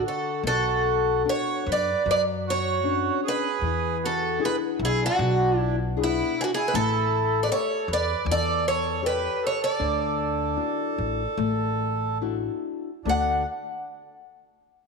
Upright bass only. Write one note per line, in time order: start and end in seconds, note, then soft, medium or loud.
0.43 1.23 B1 medium
1.66 1.92 F#2 medium
2.06 3.08 F#2 medium
3.61 4.38 E2 medium
4.79 5.06 B1 loud
5.19 6.19 B1 loud
6.74 7.48 A1 loud
7.88 8.13 E2 loud
8.26 9.26 E2 loud
9.80 10.56 D2 medium
10.98 11.24 A1 medium
11.37 12.47 A1 medium
13.05 13.43 D2 medium